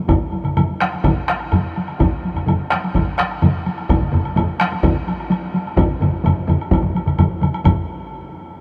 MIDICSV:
0, 0, Header, 1, 3, 480
1, 0, Start_track
1, 0, Tempo, 475059
1, 92, Time_signature, 4, 2, 24, 8
1, 4412, Tempo, 467654
1, 8764, End_track
2, 0, Start_track
2, 0, Title_t, "Taiko and cinematic ensemble drums"
2, 83, Note_on_c, 9, 47, 72
2, 85, Note_on_c, 9, 48, 64
2, 89, Note_on_c, 9, 41, 93
2, 95, Note_on_c, 9, 45, 83
2, 184, Note_off_c, 9, 47, 0
2, 186, Note_off_c, 9, 48, 0
2, 190, Note_off_c, 9, 41, 0
2, 196, Note_off_c, 9, 45, 0
2, 211, Note_on_c, 9, 48, 15
2, 312, Note_off_c, 9, 48, 0
2, 333, Note_on_c, 9, 48, 44
2, 434, Note_off_c, 9, 48, 0
2, 445, Note_on_c, 9, 47, 59
2, 453, Note_on_c, 9, 48, 18
2, 454, Note_on_c, 9, 45, 55
2, 546, Note_off_c, 9, 47, 0
2, 554, Note_off_c, 9, 48, 0
2, 555, Note_off_c, 9, 45, 0
2, 574, Note_on_c, 9, 47, 92
2, 578, Note_on_c, 9, 45, 84
2, 579, Note_on_c, 9, 48, 58
2, 675, Note_off_c, 9, 47, 0
2, 679, Note_off_c, 9, 45, 0
2, 680, Note_off_c, 9, 48, 0
2, 707, Note_on_c, 9, 48, 19
2, 808, Note_off_c, 9, 48, 0
2, 815, Note_on_c, 9, 37, 58
2, 822, Note_off_c, 9, 37, 0
2, 822, Note_on_c, 9, 37, 66
2, 826, Note_on_c, 9, 48, 45
2, 923, Note_off_c, 9, 37, 0
2, 927, Note_off_c, 9, 48, 0
2, 949, Note_on_c, 9, 48, 35
2, 1050, Note_off_c, 9, 48, 0
2, 1051, Note_on_c, 9, 41, 86
2, 1051, Note_on_c, 9, 47, 93
2, 1060, Note_on_c, 9, 45, 87
2, 1068, Note_on_c, 9, 48, 53
2, 1152, Note_off_c, 9, 41, 0
2, 1152, Note_off_c, 9, 47, 0
2, 1161, Note_off_c, 9, 45, 0
2, 1169, Note_off_c, 9, 48, 0
2, 1193, Note_on_c, 9, 48, 17
2, 1294, Note_off_c, 9, 48, 0
2, 1294, Note_on_c, 9, 37, 67
2, 1295, Note_off_c, 9, 37, 0
2, 1295, Note_on_c, 9, 37, 57
2, 1306, Note_on_c, 9, 48, 34
2, 1396, Note_off_c, 9, 37, 0
2, 1407, Note_off_c, 9, 48, 0
2, 1441, Note_on_c, 9, 48, 19
2, 1534, Note_on_c, 9, 47, 77
2, 1542, Note_off_c, 9, 48, 0
2, 1542, Note_on_c, 9, 45, 92
2, 1555, Note_on_c, 9, 48, 65
2, 1635, Note_off_c, 9, 47, 0
2, 1643, Note_off_c, 9, 45, 0
2, 1656, Note_off_c, 9, 48, 0
2, 1685, Note_on_c, 9, 48, 17
2, 1786, Note_off_c, 9, 48, 0
2, 1793, Note_on_c, 9, 48, 45
2, 1894, Note_off_c, 9, 48, 0
2, 1916, Note_on_c, 9, 48, 20
2, 2014, Note_on_c, 9, 47, 76
2, 2015, Note_on_c, 9, 45, 90
2, 2017, Note_off_c, 9, 48, 0
2, 2021, Note_on_c, 9, 41, 88
2, 2032, Note_on_c, 9, 48, 54
2, 2115, Note_off_c, 9, 47, 0
2, 2116, Note_off_c, 9, 45, 0
2, 2122, Note_off_c, 9, 41, 0
2, 2133, Note_off_c, 9, 48, 0
2, 2272, Note_on_c, 9, 48, 45
2, 2366, Note_on_c, 9, 47, 60
2, 2373, Note_off_c, 9, 48, 0
2, 2378, Note_on_c, 9, 45, 50
2, 2387, Note_on_c, 9, 48, 18
2, 2467, Note_off_c, 9, 47, 0
2, 2479, Note_off_c, 9, 45, 0
2, 2488, Note_off_c, 9, 48, 0
2, 2489, Note_on_c, 9, 47, 81
2, 2502, Note_on_c, 9, 45, 84
2, 2508, Note_on_c, 9, 48, 62
2, 2590, Note_off_c, 9, 47, 0
2, 2603, Note_off_c, 9, 45, 0
2, 2609, Note_off_c, 9, 48, 0
2, 2635, Note_on_c, 9, 48, 19
2, 2732, Note_on_c, 9, 37, 68
2, 2736, Note_off_c, 9, 48, 0
2, 2737, Note_off_c, 9, 37, 0
2, 2737, Note_on_c, 9, 37, 65
2, 2754, Note_on_c, 9, 48, 49
2, 2838, Note_off_c, 9, 37, 0
2, 2855, Note_off_c, 9, 48, 0
2, 2872, Note_on_c, 9, 48, 42
2, 2973, Note_off_c, 9, 48, 0
2, 2974, Note_on_c, 9, 47, 87
2, 2979, Note_on_c, 9, 45, 88
2, 2980, Note_on_c, 9, 41, 81
2, 2993, Note_on_c, 9, 48, 64
2, 3075, Note_off_c, 9, 47, 0
2, 3080, Note_off_c, 9, 45, 0
2, 3081, Note_off_c, 9, 41, 0
2, 3094, Note_off_c, 9, 48, 0
2, 3110, Note_on_c, 9, 48, 19
2, 3211, Note_off_c, 9, 48, 0
2, 3213, Note_on_c, 9, 37, 63
2, 3226, Note_off_c, 9, 37, 0
2, 3226, Note_on_c, 9, 37, 69
2, 3230, Note_on_c, 9, 48, 47
2, 3327, Note_off_c, 9, 37, 0
2, 3331, Note_off_c, 9, 48, 0
2, 3455, Note_on_c, 9, 47, 98
2, 3459, Note_on_c, 9, 45, 100
2, 3461, Note_on_c, 9, 48, 65
2, 3557, Note_off_c, 9, 47, 0
2, 3560, Note_off_c, 9, 45, 0
2, 3562, Note_off_c, 9, 48, 0
2, 3585, Note_on_c, 9, 48, 23
2, 3686, Note_off_c, 9, 48, 0
2, 3702, Note_on_c, 9, 48, 50
2, 3803, Note_off_c, 9, 48, 0
2, 3823, Note_on_c, 9, 48, 23
2, 3924, Note_off_c, 9, 48, 0
2, 3933, Note_on_c, 9, 47, 67
2, 3934, Note_on_c, 9, 41, 92
2, 3937, Note_on_c, 9, 45, 69
2, 3940, Note_on_c, 9, 48, 69
2, 4034, Note_off_c, 9, 47, 0
2, 4035, Note_off_c, 9, 41, 0
2, 4038, Note_off_c, 9, 45, 0
2, 4041, Note_off_c, 9, 48, 0
2, 4050, Note_on_c, 9, 47, 65
2, 4054, Note_on_c, 9, 48, 19
2, 4065, Note_on_c, 9, 45, 68
2, 4151, Note_off_c, 9, 47, 0
2, 4155, Note_off_c, 9, 48, 0
2, 4161, Note_on_c, 9, 47, 91
2, 4166, Note_off_c, 9, 45, 0
2, 4183, Note_on_c, 9, 45, 89
2, 4262, Note_off_c, 9, 47, 0
2, 4284, Note_off_c, 9, 45, 0
2, 4301, Note_on_c, 9, 48, 23
2, 4402, Note_off_c, 9, 48, 0
2, 4406, Note_on_c, 9, 47, 91
2, 4411, Note_on_c, 9, 48, 77
2, 4426, Note_on_c, 9, 45, 101
2, 4509, Note_off_c, 9, 47, 0
2, 4513, Note_off_c, 9, 48, 0
2, 4528, Note_off_c, 9, 45, 0
2, 4535, Note_on_c, 9, 48, 23
2, 4638, Note_off_c, 9, 48, 0
2, 4648, Note_on_c, 9, 37, 69
2, 4658, Note_on_c, 9, 48, 52
2, 4663, Note_off_c, 9, 37, 0
2, 4663, Note_on_c, 9, 37, 69
2, 4761, Note_off_c, 9, 48, 0
2, 4765, Note_off_c, 9, 37, 0
2, 4775, Note_on_c, 9, 48, 44
2, 4878, Note_off_c, 9, 48, 0
2, 4889, Note_on_c, 9, 41, 99
2, 4892, Note_on_c, 9, 47, 106
2, 4899, Note_on_c, 9, 48, 65
2, 4905, Note_on_c, 9, 45, 97
2, 4992, Note_off_c, 9, 41, 0
2, 4995, Note_off_c, 9, 47, 0
2, 5001, Note_off_c, 9, 48, 0
2, 5008, Note_off_c, 9, 45, 0
2, 5133, Note_on_c, 9, 48, 50
2, 5235, Note_off_c, 9, 48, 0
2, 5258, Note_on_c, 9, 48, 24
2, 5361, Note_off_c, 9, 48, 0
2, 5370, Note_on_c, 9, 48, 76
2, 5473, Note_off_c, 9, 48, 0
2, 5502, Note_on_c, 9, 48, 24
2, 5604, Note_off_c, 9, 48, 0
2, 5618, Note_on_c, 9, 48, 57
2, 5720, Note_off_c, 9, 48, 0
2, 5744, Note_on_c, 9, 48, 23
2, 5847, Note_off_c, 9, 48, 0
2, 5850, Note_on_c, 9, 48, 76
2, 5851, Note_on_c, 9, 47, 98
2, 5855, Note_on_c, 9, 41, 107
2, 5867, Note_on_c, 9, 45, 97
2, 5952, Note_off_c, 9, 48, 0
2, 5954, Note_off_c, 9, 47, 0
2, 5958, Note_off_c, 9, 41, 0
2, 5969, Note_off_c, 9, 45, 0
2, 5977, Note_on_c, 9, 48, 20
2, 6080, Note_off_c, 9, 48, 0
2, 6093, Note_on_c, 9, 48, 53
2, 6098, Note_on_c, 9, 47, 94
2, 6108, Note_on_c, 9, 45, 94
2, 6196, Note_off_c, 9, 48, 0
2, 6201, Note_off_c, 9, 47, 0
2, 6211, Note_off_c, 9, 45, 0
2, 6219, Note_on_c, 9, 48, 21
2, 6322, Note_off_c, 9, 48, 0
2, 6333, Note_on_c, 9, 48, 75
2, 6339, Note_on_c, 9, 47, 103
2, 6344, Note_on_c, 9, 45, 105
2, 6435, Note_off_c, 9, 48, 0
2, 6441, Note_off_c, 9, 47, 0
2, 6447, Note_off_c, 9, 45, 0
2, 6460, Note_on_c, 9, 48, 22
2, 6563, Note_off_c, 9, 48, 0
2, 6576, Note_on_c, 9, 47, 92
2, 6579, Note_on_c, 9, 48, 57
2, 6586, Note_on_c, 9, 45, 92
2, 6678, Note_off_c, 9, 47, 0
2, 6681, Note_off_c, 9, 48, 0
2, 6689, Note_off_c, 9, 45, 0
2, 6818, Note_on_c, 9, 47, 73
2, 6818, Note_on_c, 9, 48, 70
2, 6820, Note_on_c, 9, 41, 100
2, 6822, Note_on_c, 9, 45, 59
2, 6920, Note_off_c, 9, 47, 0
2, 6920, Note_off_c, 9, 48, 0
2, 6922, Note_off_c, 9, 41, 0
2, 6925, Note_off_c, 9, 45, 0
2, 6938, Note_on_c, 9, 47, 75
2, 6946, Note_on_c, 9, 48, 23
2, 6952, Note_on_c, 9, 45, 70
2, 7041, Note_off_c, 9, 47, 0
2, 7048, Note_off_c, 9, 48, 0
2, 7054, Note_off_c, 9, 45, 0
2, 7062, Note_on_c, 9, 48, 54
2, 7165, Note_off_c, 9, 48, 0
2, 7180, Note_on_c, 9, 47, 69
2, 7188, Note_on_c, 9, 45, 66
2, 7190, Note_on_c, 9, 48, 23
2, 7283, Note_off_c, 9, 47, 0
2, 7291, Note_off_c, 9, 45, 0
2, 7293, Note_off_c, 9, 48, 0
2, 7303, Note_on_c, 9, 47, 92
2, 7308, Note_on_c, 9, 45, 106
2, 7310, Note_on_c, 9, 48, 74
2, 7406, Note_off_c, 9, 47, 0
2, 7411, Note_off_c, 9, 45, 0
2, 7412, Note_off_c, 9, 48, 0
2, 7431, Note_on_c, 9, 48, 26
2, 7534, Note_off_c, 9, 48, 0
2, 7541, Note_on_c, 9, 47, 80
2, 7553, Note_on_c, 9, 48, 61
2, 7556, Note_on_c, 9, 45, 73
2, 7644, Note_off_c, 9, 47, 0
2, 7656, Note_off_c, 9, 48, 0
2, 7658, Note_off_c, 9, 45, 0
2, 7674, Note_on_c, 9, 48, 24
2, 7776, Note_off_c, 9, 48, 0
2, 7782, Note_on_c, 9, 47, 98
2, 7784, Note_on_c, 9, 41, 73
2, 7790, Note_on_c, 9, 48, 73
2, 7791, Note_on_c, 9, 45, 117
2, 7885, Note_off_c, 9, 47, 0
2, 7886, Note_off_c, 9, 41, 0
2, 7893, Note_off_c, 9, 45, 0
2, 7893, Note_off_c, 9, 48, 0
2, 8764, End_track
3, 0, Start_track
3, 0, Title_t, "Drums"
3, 90, Note_on_c, 9, 76, 45
3, 191, Note_off_c, 9, 76, 0
3, 326, Note_on_c, 9, 76, 29
3, 427, Note_off_c, 9, 76, 0
3, 452, Note_on_c, 9, 76, 39
3, 553, Note_off_c, 9, 76, 0
3, 576, Note_on_c, 9, 76, 49
3, 677, Note_off_c, 9, 76, 0
3, 812, Note_on_c, 9, 76, 38
3, 913, Note_off_c, 9, 76, 0
3, 937, Note_on_c, 9, 76, 35
3, 1038, Note_off_c, 9, 76, 0
3, 1056, Note_on_c, 9, 76, 49
3, 1158, Note_off_c, 9, 76, 0
3, 1299, Note_on_c, 9, 76, 36
3, 1400, Note_off_c, 9, 76, 0
3, 1418, Note_on_c, 9, 76, 33
3, 1519, Note_off_c, 9, 76, 0
3, 1534, Note_on_c, 9, 76, 43
3, 1635, Note_off_c, 9, 76, 0
3, 1780, Note_on_c, 9, 76, 36
3, 1881, Note_off_c, 9, 76, 0
3, 1898, Note_on_c, 9, 76, 36
3, 1999, Note_off_c, 9, 76, 0
3, 2023, Note_on_c, 9, 76, 45
3, 2124, Note_off_c, 9, 76, 0
3, 2262, Note_on_c, 9, 76, 32
3, 2363, Note_off_c, 9, 76, 0
3, 2390, Note_on_c, 9, 76, 41
3, 2491, Note_off_c, 9, 76, 0
3, 2510, Note_on_c, 9, 76, 44
3, 2611, Note_off_c, 9, 76, 0
3, 2747, Note_on_c, 9, 76, 32
3, 2849, Note_off_c, 9, 76, 0
3, 2874, Note_on_c, 9, 76, 37
3, 2975, Note_off_c, 9, 76, 0
3, 2988, Note_on_c, 9, 76, 45
3, 3089, Note_off_c, 9, 76, 0
3, 3230, Note_on_c, 9, 76, 39
3, 3331, Note_off_c, 9, 76, 0
3, 3348, Note_on_c, 9, 76, 37
3, 3449, Note_off_c, 9, 76, 0
3, 3458, Note_on_c, 9, 76, 36
3, 3559, Note_off_c, 9, 76, 0
3, 3702, Note_on_c, 9, 76, 38
3, 3803, Note_off_c, 9, 76, 0
3, 3816, Note_on_c, 9, 76, 36
3, 3917, Note_off_c, 9, 76, 0
3, 3941, Note_on_c, 9, 76, 51
3, 4042, Note_off_c, 9, 76, 0
3, 4180, Note_on_c, 9, 76, 36
3, 4281, Note_off_c, 9, 76, 0
3, 4297, Note_on_c, 9, 76, 41
3, 4398, Note_off_c, 9, 76, 0
3, 4418, Note_on_c, 9, 76, 56
3, 4521, Note_off_c, 9, 76, 0
3, 4659, Note_on_c, 9, 76, 36
3, 4761, Note_off_c, 9, 76, 0
3, 4778, Note_on_c, 9, 76, 39
3, 4880, Note_off_c, 9, 76, 0
3, 4900, Note_on_c, 9, 76, 49
3, 5003, Note_off_c, 9, 76, 0
3, 5145, Note_on_c, 9, 76, 41
3, 5247, Note_off_c, 9, 76, 0
3, 5268, Note_on_c, 9, 76, 35
3, 5371, Note_off_c, 9, 76, 0
3, 5389, Note_on_c, 9, 76, 46
3, 5491, Note_off_c, 9, 76, 0
3, 5637, Note_on_c, 9, 76, 35
3, 5740, Note_off_c, 9, 76, 0
3, 5752, Note_on_c, 9, 76, 38
3, 5855, Note_off_c, 9, 76, 0
3, 5872, Note_on_c, 9, 76, 51
3, 5975, Note_off_c, 9, 76, 0
3, 6110, Note_on_c, 9, 76, 37
3, 6213, Note_off_c, 9, 76, 0
3, 6354, Note_on_c, 9, 76, 51
3, 6457, Note_off_c, 9, 76, 0
3, 6598, Note_on_c, 9, 76, 41
3, 6700, Note_off_c, 9, 76, 0
3, 6719, Note_on_c, 9, 76, 39
3, 6821, Note_off_c, 9, 76, 0
3, 6843, Note_on_c, 9, 76, 52
3, 6945, Note_off_c, 9, 76, 0
3, 7078, Note_on_c, 9, 76, 44
3, 7181, Note_off_c, 9, 76, 0
3, 7193, Note_on_c, 9, 76, 44
3, 7296, Note_off_c, 9, 76, 0
3, 7306, Note_on_c, 9, 76, 55
3, 7409, Note_off_c, 9, 76, 0
3, 7556, Note_on_c, 9, 76, 50
3, 7659, Note_off_c, 9, 76, 0
3, 7673, Note_on_c, 9, 76, 51
3, 7776, Note_off_c, 9, 76, 0
3, 7786, Note_on_c, 9, 76, 77
3, 7888, Note_off_c, 9, 76, 0
3, 8764, End_track
0, 0, End_of_file